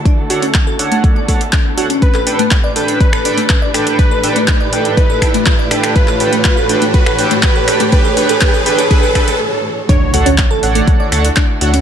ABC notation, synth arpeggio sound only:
X:1
M:4/4
L:1/16
Q:1/4=122
K:D
V:1 name="Synth arpeggio sound"
D z F C z A z A, z d A z D z F C | z A z A, z d A z2 A z A, z d A z | z A z A, z d A z2 A z A, z d A z | z A z A, z A z A, z A z A, z A z A, |
z A z A z A z A z A z A z4 | [Dd] z [Ff] [Cc] z [Aa] z [A,A] z [dd'] [Aa] z [Dd] z [Ff] [Cc] |]